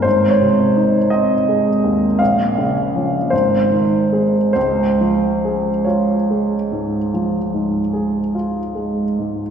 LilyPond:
<<
  \new Staff \with { instrumentName = "Upright piano" } { \time 4/4 \key des \major \tempo 4 = 50 c''16 des''8. ees''4 f''4 c''4 | c''4 des''2 r4 | }
  \new Staff \with { instrumentName = "Upright piano" } { \clef bass \time 4/4 \key des \major \tuplet 3/2 { aes,,8 c8 ees'8 c'8 aes8 ees,8 bes,,8 des8 <f des'>8 aes,,8 ees8 <aes aes'>8 } | \tuplet 3/2 { des,8 f8 aes'8 f'8 aes8 aes,8 f8 aes,8 aes'8 f'8 aes8 aes,8 } | }
>>